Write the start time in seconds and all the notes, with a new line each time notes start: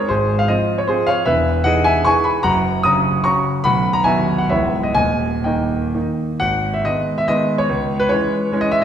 Already playing: C#5
0.09 G#1 G#2 G#4 C5
0.39 F5
0.48 F3 C4 F4 C5 D#5
0.78 C#5
0.88 F3 C4 F4 G#4 C5
1.07 C#5 F5
1.25 E1 E2 B4 E5
1.64 E3 D#4 G#4 D#5 F#5
1.84 E5 G#5
2.05 E3 D#4 G#4 G#5 C#6
2.24 G#5 B5
2.43 F#1 F#2 F#5 A#5
2.83 C#3 C#4 F#4 A#5 D#6
3.24 C#3 C#4 F#4 A#5 C#6
3.64 B0 B1 F#5 B5
3.93 A#5
4.04 D#3 B3 F#4 E5 G#5
4.38 F#5
4.49 C#1 C#2 G#3 B3 E4 C#5 E5
4.83 D#5
4.95 D#1 D#2 D#5 G#5
5.44 D#3 A#3 D#4 D#5 G5
5.94 D#3 A#3 D#4
6.40 G#1 F#5
6.74 E5
6.85 D#3 G#3 B3 D#5
7.18 E5
7.28 D#3 G#3 B3 D#5
7.58 C#5
7.69 C#2
8.00 B4
8.09 E3 G#3 C#4 C#5
8.52 E3 G#3 C#4
8.61 D#5
8.71 E5